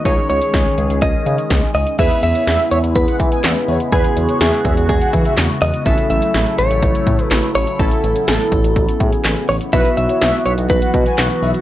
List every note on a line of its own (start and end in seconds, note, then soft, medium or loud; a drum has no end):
0.05 0.16 C#2 loud
0.05 1.97 D#3 medium
0.05 1.97 G#3 medium
0.05 1.95 C#4 medium
0.05 1.97 C#4 medium
0.05 1.95 D#4 medium
0.05 1.95 G#4 medium
0.05 1.97 G#4 medium
0.05 0.28 C#5 loud
0.05 kick loud
0.05 closed hi-hat medium
0.29 0.40 C#2 loud
0.29 1.02 C#5 loud
0.29 closed hi-hat medium
0.42 closed hi-hat medium
0.54 0.64 C#2 medium
0.54 kick loud
0.54 snare loud
0.54 closed hi-hat medium
0.78 0.88 C#2 loud
0.78 closed hi-hat medium
0.90 1.00 C#2 medium
0.90 closed hi-hat medium
1.02 1.12 C#2 loud
1.02 1.71 D#5 medium
1.02 kick loud
1.02 closed hi-hat medium
1.26 1.37 C#3 loud
1.26 closed hi-hat medium
1.38 closed hi-hat soft
1.50 1.61 C#2 loud
1.50 kick loud
1.50 snare loud
1.50 closed hi-hat medium
1.75 1.85 C#2 loud
1.75 1.97 D#5 loud
1.75 open hi-hat medium
1.87 closed hi-hat medium
1.99 2.09 E2 loud
1.99 9.69 C#3 medium
1.99 5.82 G#3 medium
1.99 3.88 B3 medium
1.99 5.82 B3 medium
1.99 3.88 E4 medium
1.99 3.91 E4 medium
1.99 3.89 G#4 medium
1.99 2.16 B4 loud
1.99 2.21 E5 loud
1.99 kick loud
1.99 closed hi-hat medium
1.99 crash loud
2.11 closed hi-hat medium
2.23 2.33 E2 loud
2.23 2.71 E5 loud
2.23 closed hi-hat medium
2.35 2.44 C#5 medium
2.35 closed hi-hat medium
2.47 2.58 E2 loud
2.47 2.64 E5 medium
2.47 snare loud
2.47 closed hi-hat medium
2.59 closed hi-hat medium
2.71 2.82 E2 loud
2.71 2.78 C#5 loud
2.71 2.80 E5 medium
2.71 closed hi-hat medium
2.83 2.94 E2 loud
2.83 closed hi-hat medium
2.96 3.06 E2 loud
2.96 3.92 B4 medium
2.96 kick loud
2.96 closed hi-hat medium
3.08 3.16 F#5 medium
3.08 closed hi-hat medium
3.20 3.30 E3 loud
3.20 kick medium
3.20 closed hi-hat medium
3.32 3.40 G#5 medium
3.32 closed hi-hat soft
3.44 3.54 E2 loud
3.44 3.52 E5 medium
3.44 snare loud
3.44 clap medium
3.44 closed hi-hat medium
3.56 closed hi-hat medium
3.68 3.79 E2 loud
3.68 3.77 C#5 medium
3.68 open hi-hat medium
3.80 closed hi-hat medium
3.92 4.03 E2 loud
3.92 5.82 B3 medium
3.92 5.82 E4 medium
3.92 5.84 F#4 medium
3.92 5.82 G#4 medium
3.92 4.40 G#4 medium
3.92 4.09 B4 loud
3.92 kick loud
3.92 closed hi-hat medium
4.04 closed hi-hat medium
4.17 4.27 E2 loud
4.17 closed hi-hat medium
4.29 4.37 C#5 medium
4.29 closed hi-hat medium
4.41 4.51 E2 loud
4.41 4.88 G#4 medium
4.41 4.58 E5 medium
4.41 snare loud
4.41 closed hi-hat medium
4.53 closed hi-hat medium
4.65 4.75 E2 loud
4.65 4.73 E5 medium
4.65 kick loud
4.65 closed hi-hat medium
4.77 4.87 E2 medium
4.77 closed hi-hat medium
4.89 4.99 E2 loud
4.89 5.34 G#4 medium
4.89 kick loud
4.89 closed hi-hat medium
5.01 5.10 F#5 medium
5.01 closed hi-hat medium
5.13 5.24 E3 loud
5.13 kick medium
5.13 closed hi-hat medium
5.25 5.34 E5 medium
5.25 closed hi-hat soft
5.37 5.48 E2 loud
5.37 snare loud
5.37 clap loud
5.37 closed hi-hat medium
5.49 closed hi-hat medium
5.62 5.72 E2 loud
5.62 5.85 D#5 loud
5.62 open hi-hat medium
5.74 closed hi-hat medium
5.86 5.96 A1 loud
5.86 9.69 F#3 medium
5.86 7.78 A3 medium
5.86 7.76 C#4 medium
5.86 7.76 E4 medium
5.86 9.69 E4 medium
5.86 7.76 A4 medium
5.86 6.09 E5 loud
5.86 kick loud
5.86 closed hi-hat medium
5.98 closed hi-hat medium
6.10 6.20 A1 loud
6.10 6.58 E5 loud
6.10 closed hi-hat medium
6.22 closed hi-hat medium
6.34 6.45 A1 loud
6.34 snare loud
6.34 closed hi-hat medium
6.46 closed hi-hat medium
6.58 6.69 A1 loud
6.58 7.24 C#5 loud
6.58 closed hi-hat medium
6.71 6.81 A1 medium
6.71 closed hi-hat medium
6.83 6.93 A1 loud
6.83 kick loud
6.83 closed hi-hat medium
6.95 closed hi-hat medium
7.07 7.17 A2 loud
7.07 kick medium
7.07 closed hi-hat medium
7.19 closed hi-hat soft
7.24 7.51 B4 loud
7.31 7.41 A1 loud
7.31 snare loud
7.31 clap medium
7.31 closed hi-hat medium
7.43 closed hi-hat medium
7.55 7.66 A1 loud
7.55 7.80 C#5 loud
7.55 open hi-hat medium
7.67 closed hi-hat medium
7.79 7.90 A1 loud
7.79 11.61 B3 medium
7.79 9.69 C#4 medium
7.79 9.69 E4 medium
7.79 9.69 A4 medium
7.79 8.25 A4 loud
7.79 kick loud
7.79 closed hi-hat medium
7.91 closed hi-hat medium
8.04 8.14 A1 loud
8.04 closed hi-hat medium
8.16 closed hi-hat medium
8.28 8.38 A1 loud
8.28 9.05 A4 loud
8.28 snare loud
8.28 closed hi-hat medium
8.40 closed hi-hat medium
8.52 8.62 A1 loud
8.52 kick loud
8.52 closed hi-hat medium
8.64 8.75 A1 loud
8.64 closed hi-hat medium
8.76 8.87 A1 loud
8.76 kick loud
8.76 closed hi-hat medium
8.89 closed hi-hat medium
9.00 9.11 A2 loud
9.00 kick loud
9.00 closed hi-hat medium
9.05 9.45 G#4 loud
9.12 closed hi-hat soft
9.25 9.35 A1 loud
9.25 snare loud
9.25 clap loud
9.25 closed hi-hat medium
9.37 closed hi-hat medium
9.49 9.59 A1 loud
9.49 9.55 C#5 medium
9.49 open hi-hat medium
9.61 closed hi-hat medium
9.73 9.83 B1 loud
9.73 11.61 E3 medium
9.73 11.61 F#3 medium
9.73 11.61 B3 medium
9.73 11.61 E4 medium
9.73 11.61 F#4 medium
9.73 9.90 B4 loud
9.73 9.96 E5 loud
9.73 kick loud
9.73 closed hi-hat medium
9.85 closed hi-hat medium
9.97 10.08 B1 loud
9.97 10.45 E5 loud
9.97 closed hi-hat medium
10.09 10.18 C#5 medium
10.09 closed hi-hat medium
10.21 10.32 B1 loud
10.21 10.38 E5 medium
10.21 snare loud
10.21 closed hi-hat medium
10.33 closed hi-hat medium
10.46 10.56 B1 medium
10.46 10.52 C#5 medium
10.46 10.54 E5 medium
10.46 closed hi-hat medium
10.58 10.68 B1 loud
10.58 closed hi-hat medium
10.70 10.80 B1 loud
10.70 11.61 B4 medium
10.70 kick loud
10.70 closed hi-hat medium
10.82 10.90 F#5 medium
10.82 closed hi-hat medium
10.94 11.04 B2 loud
10.94 kick medium
10.94 closed hi-hat medium
11.06 11.14 G#5 medium
11.06 closed hi-hat soft
11.18 11.29 B1 loud
11.18 11.27 F#5 medium
11.18 snare loud
11.18 clap loud
11.18 closed hi-hat medium
11.30 closed hi-hat medium
11.42 11.53 B1 loud
11.42 11.51 E5 medium
11.42 open hi-hat medium
11.54 closed hi-hat medium